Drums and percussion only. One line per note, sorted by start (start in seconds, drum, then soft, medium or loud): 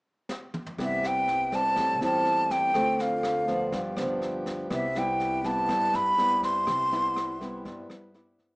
0.29 snare soft
0.54 mid tom medium
0.66 floor tom medium
0.79 kick medium
0.79 cross-stick soft
0.79 snare soft
1.03 snare soft
1.28 snare soft
1.52 kick soft
1.52 snare soft
1.76 kick medium
1.76 cross-stick medium
1.76 snare soft
2.01 snare soft
2.25 snare soft
2.50 kick soft
2.50 snare soft
2.74 kick medium
2.74 cross-stick medium
2.74 snare soft
2.99 snare soft
3.23 cross-stick medium
3.23 snare soft
3.48 kick soft
3.48 snare soft
3.72 kick medium
3.72 snare soft
3.97 cross-stick medium
3.97 snare soft
4.22 snare soft
4.46 kick soft
4.46 snare soft
4.71 kick medium
4.71 cross-stick medium
4.71 snare soft
4.95 snare soft
5.20 snare soft
5.44 kick soft
5.44 snare soft
5.69 kick medium
5.69 cross-stick medium
5.69 snare soft
5.93 snare soft
6.18 snare soft
6.43 kick soft
6.43 snare soft
6.67 kick medium
6.67 cross-stick medium
6.67 snare soft
6.92 snare soft
7.16 cross-stick medium
7.16 snare soft
7.41 kick soft
7.41 snare soft
7.65 kick medium
7.65 snare soft
7.90 cross-stick medium
7.90 snare soft
8.14 snare soft
8.39 kick soft
8.39 snare soft